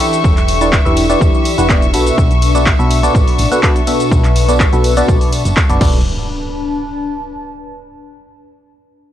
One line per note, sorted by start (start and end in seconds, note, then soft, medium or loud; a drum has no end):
0.00 0.58 E3 medium
0.00 0.58 D4 medium
0.00 5.80 D4 medium
0.00 0.58 E4 medium
0.00 0.58 G4 medium
0.00 0.78 A4 medium
0.00 0.58 B4 medium
0.00 5.81 E5 medium
0.00 0.58 E5 medium
0.00 0.78 G5 medium
0.00 5.81 C#6 medium
0.00 open hi-hat loud
0.00 ride medium
0.00 tambourine medium
0.13 closed hi-hat medium
0.13 tambourine medium
0.13 shaker medium
0.24 0.79 E1 loud
0.24 kick loud
0.24 tambourine soft
0.24 shaker medium
0.37 clap soft
0.37 closed hi-hat medium
0.37 shaker soft
0.47 1.94 G4 medium
0.47 open hi-hat loud
0.47 ride medium
0.47 tambourine medium
0.61 0.78 E3 medium
0.61 0.78 D4 medium
0.61 0.78 E4 medium
0.61 0.78 G4 medium
0.61 0.78 B4 medium
0.61 0.78 D5 medium
0.61 closed hi-hat medium
0.61 tambourine medium
0.61 shaker medium
0.73 kick loud
0.73 clap loud
0.73 tambourine soft
0.73 shaker medium
0.85 1.16 E1 loud
0.85 1.07 E3 medium
0.85 1.07 D4 medium
0.85 1.07 E4 medium
0.85 1.07 G4 medium
0.85 1.07 B4 medium
0.85 1.07 E5 loud
0.85 2.60 E5 medium
0.85 shaker soft
0.97 open hi-hat loud
0.97 ride medium
0.97 tambourine medium
1.10 1.56 E3 medium
1.10 1.56 D4 medium
1.10 1.56 E4 medium
1.10 1.56 G4 medium
1.10 1.56 B4 medium
1.10 1.56 D5 loud
1.10 closed hi-hat medium
1.10 tambourine medium
1.10 shaker medium
1.21 1.30 E1 loud
1.21 kick loud
1.21 tambourine soft
1.21 shaker medium
1.35 shaker soft
1.45 open hi-hat loud
1.45 ride medium
1.45 tambourine medium
1.58 1.95 E1 medium
1.58 1.67 E3 medium
1.58 1.67 D4 medium
1.58 1.67 E4 medium
1.58 1.67 G4 medium
1.58 1.67 B4 medium
1.58 1.67 F#5 loud
1.58 closed hi-hat medium
1.58 tambourine medium
1.58 shaker medium
1.69 1.87 B2 medium
1.69 1.87 D4 medium
1.69 1.87 E4 medium
1.69 1.87 G4 medium
1.69 1.87 D5 loud
1.69 kick loud
1.69 clap loud
1.69 tambourine soft
1.69 shaker medium
1.82 closed hi-hat medium
1.82 shaker soft
1.94 2.11 B1 loud
1.94 2.52 B2 medium
1.94 2.52 D4 medium
1.94 2.52 F#4 medium
1.94 2.52 A4 medium
1.94 2.52 B4 medium
1.94 2.52 E5 medium
1.94 open hi-hat loud
1.94 ride medium
1.94 tambourine medium
2.07 closed hi-hat medium
2.07 tambourine medium
2.07 shaker medium
2.18 2.73 B1 loud
2.18 kick loud
2.18 tambourine soft
2.18 shaker medium
2.31 closed hi-hat medium
2.31 shaker soft
2.36 5.81 B4 medium
2.42 open hi-hat loud
2.42 ride medium
2.42 tambourine medium
2.55 2.71 B2 medium
2.55 2.71 D4 medium
2.55 2.71 F#4 medium
2.55 2.71 A4 medium
2.55 2.71 B4 medium
2.55 2.71 D5 medium
2.55 closed hi-hat medium
2.55 tambourine medium
2.55 shaker medium
2.66 kick loud
2.66 clap loud
2.66 shaker medium
2.79 3.09 B1 loud
2.79 3.00 B2 medium
2.79 3.00 D4 medium
2.79 3.00 F#4 medium
2.79 3.00 A4 medium
2.79 3.00 B4 medium
2.79 3.00 E5 loud
2.79 shaker soft
2.91 5.81 A5 medium
2.91 open hi-hat loud
2.91 ride medium
2.91 tambourine loud
3.03 3.49 B2 medium
3.03 3.49 D4 medium
3.03 3.49 F#4 medium
3.03 3.49 A4 medium
3.03 3.49 B4 medium
3.03 3.49 D5 loud
3.03 closed hi-hat medium
3.03 tambourine soft
3.03 shaker medium
3.15 3.24 A1 medium
3.15 kick loud
3.15 tambourine soft
3.15 shaker medium
3.28 open hi-hat medium
3.28 shaker soft
3.38 3.48 A1 medium
3.38 open hi-hat loud
3.38 ride medium
3.38 tambourine medium
3.52 3.60 B2 medium
3.52 3.60 D4 medium
3.52 3.60 F#4 medium
3.52 3.60 A4 medium
3.52 3.60 B4 medium
3.52 3.60 F#5 loud
3.52 closed hi-hat medium
3.52 tambourine soft
3.52 shaker medium
3.63 3.80 B2 medium
3.63 3.80 D4 medium
3.63 3.80 F#4 medium
3.63 3.80 A4 medium
3.63 3.80 D5 loud
3.63 kick loud
3.63 clap loud
3.63 tambourine soft
3.63 shaker medium
3.76 closed hi-hat medium
3.76 shaker soft
3.87 4.45 B2 medium
3.87 4.45 D4 medium
3.87 4.45 F#4 medium
3.87 4.45 A4 medium
3.87 4.45 B4 medium
3.87 4.45 E5 medium
3.87 open hi-hat loud
3.87 ride medium
3.87 tambourine medium
4.00 closed hi-hat medium
4.00 tambourine soft
4.00 shaker medium
4.11 4.66 B1 loud
4.11 kick loud
4.11 tambourine soft
4.11 shaker medium
4.24 clap soft
4.24 closed hi-hat medium
4.24 shaker soft
4.36 open hi-hat loud
4.36 ride medium
4.36 tambourine loud
4.48 4.65 B2 medium
4.48 4.65 D4 medium
4.48 4.65 F#4 medium
4.48 4.65 A4 medium
4.48 4.65 B4 medium
4.48 4.65 D5 medium
4.48 closed hi-hat medium
4.48 tambourine medium
4.48 shaker medium
4.60 kick loud
4.60 clap loud
4.60 tambourine soft
4.60 shaker medium
4.73 5.03 B1 loud
4.73 4.94 B2 medium
4.73 4.94 D4 medium
4.73 4.94 F#4 medium
4.73 4.94 A4 medium
4.73 4.94 B4 medium
4.73 4.94 E5 loud
4.73 closed hi-hat soft
4.73 shaker soft
4.84 open hi-hat loud
4.84 ride medium
4.84 tambourine medium
4.97 5.43 B2 loud
4.97 5.43 D4 medium
4.97 5.43 F#4 medium
4.97 5.43 A4 medium
4.97 5.43 B4 medium
4.97 5.43 D5 loud
4.97 closed hi-hat medium
4.97 tambourine medium
4.97 shaker medium
5.08 5.17 B1 loud
5.08 kick loud
5.08 shaker medium
5.21 open hi-hat medium
5.21 shaker soft
5.32 open hi-hat loud
5.32 ride medium
5.32 tambourine medium
5.45 5.53 F#1 loud
5.45 closed hi-hat medium
5.45 tambourine medium
5.45 shaker medium
5.56 kick loud
5.56 clap loud
5.56 tambourine soft
5.56 shaker medium
5.69 5.80 F#1 medium
5.69 5.79 B2 medium
5.69 5.79 D4 medium
5.69 5.79 F#4 medium
5.69 5.79 A4 medium
5.69 5.79 B4 medium
5.69 5.79 D5 loud
5.69 closed hi-hat medium
5.69 shaker soft
5.81 6.03 B1 medium
5.81 5.99 D4 medium
5.81 7.70 D4 medium
5.81 5.99 F#4 medium
5.81 5.99 A4 medium
5.81 5.99 B4 medium
5.81 5.99 D5 loud
5.81 kick loud
5.81 crash medium
5.81 tambourine medium
5.81 impact medium
5.89 7.70 B4 medium
5.93 tambourine medium
6.20 7.95 A5 medium